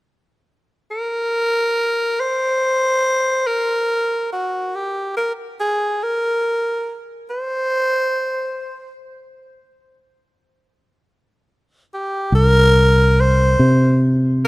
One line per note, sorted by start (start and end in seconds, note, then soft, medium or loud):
0.91 2.21 A#4 medium
2.20 3.48 C5 medium
3.47 4.30 A#4 medium
4.32 4.77 F#4 medium
4.75 5.15 G4 medium
5.17 5.33 A#4 medium
5.60 6.05 G#4 medium
6.03 7.01 A#4 medium
7.30 8.92 C5 medium
11.94 12.31 G4 medium
12.32 13.55 C2 medium
12.32 13.22 A#4 medium
13.20 14.03 C5 medium
13.59 14.47 C3 medium